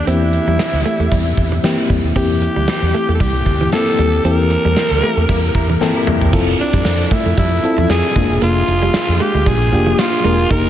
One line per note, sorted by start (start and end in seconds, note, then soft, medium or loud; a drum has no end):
0.06 0.37 E2 loud
0.06 0.81 E3 medium
0.06 0.88 A#3 medium
0.06 0.88 C4 medium
0.06 0.18 C4 medium
0.06 0.14 D4 medium
0.06 1.60 E4 medium
0.06 0.89 G4 medium
0.06 closed hi-hat medium
0.13 0.91 E4 medium
0.33 muted clean electric guitar stroke soft
0.33 closed hi-hat medium
0.47 0.56 E2 medium
0.47 0.57 G3 medium
0.59 muted clean electric guitar stroke soft
0.59 snare loud
0.59 closed hi-hat medium
0.73 0.82 D2 medium
0.86 0.96 A3 medium
0.86 closed hi-hat medium
0.99 1.08 E2 medium
0.99 1.09 A3 medium
1.11 1.31 E2 medium
1.11 1.23 G3 medium
1.11 kick medium
1.11 closed hi-hat medium
1.37 1.57 E2 medium
1.37 muted clean electric guitar stroke soft
1.37 kick medium
1.37 closed hi-hat medium
1.52 1.61 E3 medium
1.63 1.74 E3 loud
1.63 2.05 A#3 medium
1.63 2.05 C4 medium
1.63 2.05 E4 medium
1.63 2.06 G4 medium
1.63 snare loud
1.63 closed hi-hat medium
1.90 2.01 E2 medium
1.90 2.01 G3 medium
1.90 kick medium
1.90 closed hi-hat medium
2.04 2.13 D#2 medium
2.16 2.46 E2 loud
2.16 2.90 E3 medium
2.16 2.97 A#3 medium
2.16 2.27 C4 medium
2.16 2.97 C4 medium
2.16 2.97 E4 medium
2.16 3.10 G4 loud
2.16 2.98 G4 medium
2.16 kick loud
2.16 closed hi-hat medium
2.42 muted clean electric guitar stroke soft
2.42 closed hi-hat medium
2.56 2.65 D2 medium
2.56 2.65 G3 medium
2.68 muted clean electric guitar stroke soft
2.68 snare loud
2.68 closed hi-hat medium
2.82 2.91 E2 medium
2.94 3.05 A3 medium
2.94 closed hi-hat medium
3.08 3.17 E2 medium
3.08 3.18 A3 medium
3.15 3.22 A4 medium
3.20 3.40 C2 medium
3.20 3.31 G3 medium
3.20 3.72 G4 loud
3.20 kick medium
3.20 closed hi-hat medium
3.46 3.66 D2 medium
3.46 muted clean electric guitar stroke soft
3.46 kick medium
3.46 closed hi-hat medium
3.61 3.70 E3 medium
3.72 4.14 A#3 medium
3.72 4.14 C4 medium
3.72 4.14 E4 medium
3.72 4.21 A4 loud
3.72 4.14 A4 medium
3.72 snare medium
3.72 closed hi-hat medium
3.99 4.18 D#2 medium
3.99 4.10 G3 medium
3.99 closed hi-hat medium
4.24 4.55 E2 loud
4.24 4.99 E3 medium
4.24 5.05 A#3 medium
4.24 5.06 C4 medium
4.24 4.36 C4 medium
4.24 5.06 E4 medium
4.24 5.06 G4 medium
4.24 5.78 A#4 loud
4.24 closed hi-hat medium
4.51 muted clean electric guitar stroke soft
4.51 closed hi-hat medium
4.65 4.74 E2 medium
4.65 4.74 G3 medium
4.77 muted clean electric guitar stroke soft
4.77 snare loud
4.77 closed hi-hat loud
4.91 5.00 D2 medium
5.03 5.14 A3 medium
5.03 5.15 A#3 medium
5.03 5.15 E4 medium
5.03 5.15 G4 medium
5.03 5.15 A#4 medium
5.03 closed hi-hat medium
5.17 5.26 E2 medium
5.17 5.26 A3 medium
5.29 5.49 E2 loud
5.29 5.40 G3 medium
5.29 5.38 A#3 medium
5.29 5.38 E4 medium
5.29 5.38 G4 loud
5.29 5.38 A#4 loud
5.29 kick medium
5.29 closed hi-hat medium
5.55 5.74 E2 medium
5.55 5.67 A#3 medium
5.55 5.67 E4 medium
5.55 5.67 G4 medium
5.55 5.67 A#4 medium
5.55 5.79 A#5 medium
5.55 muted clean electric guitar stroke soft
5.55 kick loud
5.55 closed hi-hat medium
5.70 5.78 E3 medium
5.81 5.92 E3 loud
5.81 6.22 A#3 medium
5.81 6.23 C4 medium
5.81 6.23 E4 medium
5.81 6.23 A4 loud
5.81 6.05 G5 medium
5.81 snare medium
5.95 6.31 A#3 medium
5.95 6.31 E4 medium
5.95 6.31 G4 medium
5.95 6.31 A#4 loud
6.07 6.18 E2 medium
6.07 6.18 G3 medium
6.07 6.31 E5 medium
6.07 mid tom medium
6.21 6.30 E2 medium
6.21 floor tom medium
6.33 6.53 F1 loud
6.33 6.44 F3 medium
6.33 7.14 C4 medium
6.33 7.14 E4 medium
6.33 7.14 F4 medium
6.33 7.15 A4 loud
6.33 kick loud
6.33 crash medium
6.59 7.14 D4 medium
6.59 muted clean electric guitar stroke soft
6.59 closed hi-hat medium
6.73 6.82 F2 medium
6.73 6.83 G3 medium
6.73 kick loud
6.73 closed hi-hat medium
6.85 7.05 F2 loud
6.85 muted clean electric guitar stroke soft
6.85 snare loud
6.85 closed hi-hat loud
6.85 tambourine medium
7.11 7.23 A3 medium
7.11 7.38 E4 medium
7.11 kick loud
7.11 closed hi-hat medium
7.26 7.35 F2 medium
7.26 7.35 A3 medium
7.37 7.57 F2 loud
7.37 7.49 G3 medium
7.37 7.87 E4 medium
7.37 kick medium
7.37 closed hi-hat medium
7.63 8.05 C4 medium
7.63 8.05 E4 medium
7.63 8.05 F4 medium
7.63 8.06 A4 medium
7.63 muted clean electric guitar stroke soft
7.63 closed hi-hat medium
7.78 7.87 E2 medium
7.78 7.87 F3 medium
7.90 8.00 F2 loud
7.90 8.39 G#4 loud
7.90 snare loud
7.90 closed hi-hat loud
7.90 tambourine medium
8.16 8.27 F1 loud
8.16 8.27 G#3 medium
8.16 9.00 A#3 medium
8.16 9.00 D4 medium
8.16 9.00 F4 medium
8.16 9.00 G#4 medium
8.16 kick loud
8.16 closed hi-hat medium
8.30 8.39 E1 medium
8.42 8.61 F1 loud
8.42 8.53 A#3 medium
8.42 9.23 F4 loud
8.42 closed hi-hat medium
8.68 8.88 F1 medium
8.68 muted clean electric guitar stroke soft
8.68 closed hi-hat medium
8.82 8.91 G3 medium
8.82 closed hi-hat medium
8.94 muted clean electric guitar stroke soft
8.94 snare loud
8.94 closed hi-hat medium
8.94 tambourine medium
9.09 9.17 F2 loud
9.20 9.31 G#3 medium
9.20 9.49 G4 medium
9.20 closed hi-hat medium
9.34 9.43 D2 medium
9.34 9.44 G#3 medium
9.46 9.74 A#1 loud
9.46 9.57 G3 medium
9.46 10.01 G#4 loud
9.46 kick medium
9.46 closed hi-hat medium
9.72 9.92 F1 loud
9.72 10.14 A#3 medium
9.72 10.14 D4 medium
9.72 10.14 F4 medium
9.72 10.14 G4 medium
9.72 muted clean electric guitar stroke soft
9.72 closed hi-hat medium
9.87 9.96 F3 medium
9.99 10.52 F4 loud
9.99 snare loud
9.99 closed hi-hat loud
9.99 tambourine medium
10.24 10.44 E1 medium
10.24 10.35 G#3 medium
10.24 10.45 A#3 medium
10.24 10.45 D4 medium
10.24 10.46 F4 medium
10.24 10.46 A#4 medium
10.24 closed hi-hat medium
10.50 10.70 F1 loud
10.50 10.70 A#3 medium
10.50 10.62 D#4 medium
10.50 10.70 D#4 medium
10.50 10.70 G4 medium
10.50 10.70 A#4 loud
10.50 10.70 A#4 medium
10.50 kick loud
10.50 closed hi-hat loud